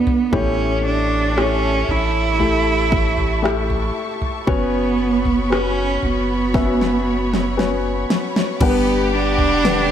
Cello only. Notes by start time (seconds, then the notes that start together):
Already playing: B3
0.35 C#4
0.86 D4
1.38 C#4
1.91 E4
4.49 B3
5.52 C#4
6.05 B3
8.63 B3
9.15 D4